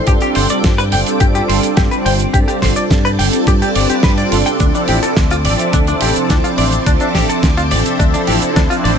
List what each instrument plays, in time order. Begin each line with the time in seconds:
0.07 fingered electric bass G2, analog synth pad G3 C4 D4 F4 A4, string machine C4 D5 G5 D6, clean electric guitar G4, kick, closed hi-hat, cabasa
0.21 clean electric guitar G4, closed hi-hat, cabasa
0.35 fingered electric bass G1, clean electric guitar C5, open hi-hat
0.49 analog synth pad G3 C4 D4 F4 A4, clean electric guitar D5, muted fingered electric bass stroke, closed hi-hat, cabasa
0.64 fingered electric bass G2, kick, snare, closed hi-hat, cabasa
0.78 clean electric guitar B4, closed hi-hat, cabasa
0.92 fingered electric bass G1, analog synth pad G3 C4 D4 F4 A4, clean electric guitar G5, open hi-hat
1.06 closed hi-hat, cabasa
1.20 fingered electric bass G2, clean electric guitar G4, kick, closed hi-hat, cabasa
1.34 analog synth pad G3 C4 D4 F4 A4, clean electric guitar G4, closed hi-hat, cabasa
1.49 fingered electric bass G1, clean electric guitar C5, open hi-hat
1.63 analog synth pad G3 C4 D4 F4 A4, closed hi-hat, cabasa
1.77 fingered electric bass G2, clean electric guitar G4, kick, snare, closed hi-hat, cabasa
1.91 analog synth pad G3 C4 D4 F4 C5, clean electric guitar B4, closed hi-hat, cabasa
2.05 fingered electric bass G1, clean electric guitar G5, open hi-hat
2.19 closed hi-hat, cabasa
2.33 fingered electric bass G2, analog synth pad G3 C4 D4 F4 A4, clean electric guitar G4, string machine A5, kick, closed hi-hat, cabasa
2.48 clean electric guitar G4, closed hi-hat, cabasa
2.62 fingered electric bass G1, clean electric guitar C5, kick, snare, open hi-hat
2.76 analog synth pad G3 C4 D4 F4 A4, clean electric guitar D5, closed hi-hat, cabasa
2.90 fingered electric bass G2, kick, snare, closed hi-hat, cabasa
3.05 clean electric guitar B4, closed hi-hat, cabasa
3.18 fingered electric bass G1, analog synth pad G3 C4 D4 F4 A4, clean electric guitar G5, open hi-hat
3.33 closed hi-hat, cabasa
3.47 fingered electric bass G2, clean electric guitar G4, kick, closed hi-hat, cabasa
3.61 analog synth pad G3 C4 D4 F4 A4, clean electric guitar G4, muted fingered electric bass stroke, closed hi-hat, cabasa
3.75 fingered electric bass G1, analog synth pad G3 C4 D4 F4 B4, clean electric guitar D5, open hi-hat
3.90 clean electric guitar G4, muted fingered electric bass stroke, closed hi-hat, cabasa
4.03 fingered electric bass G2, analog synth pad G3 C4 D4 F4 G4, clean electric guitar B4, kick, snare, closed hi-hat, cabasa
4.17 analog synth pad G3 C4 D4 F4 A4, clean electric guitar D5, closed hi-hat, cabasa
4.32 fingered electric bass G1, clean electric guitar F4, open hi-hat
4.46 analog synth pad G3 C4 D4 F4 A4, clean electric guitar G5, closed hi-hat, cabasa
4.60 fingered electric bass D2, analog synth pad F3 C4 D4 E4 A4, clean electric guitar D4, string machine A5, kick, closed hi-hat, cabasa
4.75 clean electric guitar D4, closed hi-hat, cabasa
4.88 fingered electric bass A1, clean electric guitar G4, open hi-hat
5.02 analog synth pad F3 C4 D4 E4 A4, clean electric guitar A4, closed hi-hat, cabasa
5.17 fingered electric bass D2, kick, snare, closed hi-hat, cabasa
5.31 clean electric guitar F4, closed hi-hat, cabasa
5.45 fingered electric bass A1, analog synth pad F3 C4 D4 A4 E5, clean electric guitar D5, open hi-hat
5.59 closed hi-hat, cabasa
5.73 fingered electric bass D2, clean electric guitar D4, kick, closed hi-hat, cabasa
5.87 analog synth pad F3 C4 D4 E4 A4, clean electric guitar D4, closed hi-hat, cabasa
6.01 fingered electric bass A1, clean electric guitar G4, open hi-hat
6.15 analog synth pad F3 C4 D4 E4 A4, closed hi-hat, cabasa
6.30 fingered electric bass D2, clean electric guitar D4, kick, snare, closed hi-hat, cabasa
6.44 analog synth pad F3 C4 D4 E4 C5, clean electric guitar F4, closed hi-hat, cabasa
6.58 fingered electric bass A1, clean electric guitar D5, open hi-hat
6.72 closed hi-hat, cabasa
6.86 fingered electric bass D2, analog synth pad F3 C4 D4 A4 E5, clean electric guitar D4, kick, closed hi-hat, cabasa
7.00 clean electric guitar D4, closed hi-hat, cabasa
7.15 fingered electric bass A1, clean electric guitar G4, kick, snare, open hi-hat
7.29 analog synth pad F3 C4 D4 E4 A4, clean electric guitar A4, closed hi-hat, cabasa
7.43 fingered electric bass D2, kick, snare, closed hi-hat, cabasa
7.57 clean electric guitar F4, closed hi-hat, cabasa
7.71 fingered electric bass A1, analog synth pad F3 C4 D4 A4 E5, clean electric guitar D5, open hi-hat
7.86 closed hi-hat, cabasa
7.99 fingered electric bass D2, clean electric guitar D4, kick, closed hi-hat, cabasa
8.14 analog synth pad F3 C4 D4 E4 A4, clean electric guitar D4, muted fingered electric bass stroke, closed hi-hat, cabasa
8.27 fingered electric bass A1, clean electric guitar G4, open hi-hat
8.42 analog synth pad F3 C4 D4 E4 A4, closed hi-hat, cabasa
8.56 fingered electric bass D2, clean electric guitar D4, kick, snare, closed hi-hat, cabasa
8.70 analog synth pad F3 C4 D4 E4 C5, clean electric guitar F4, closed hi-hat, cabasa
8.84 fingered electric bass A1, clean electric guitar D5, open hi-hat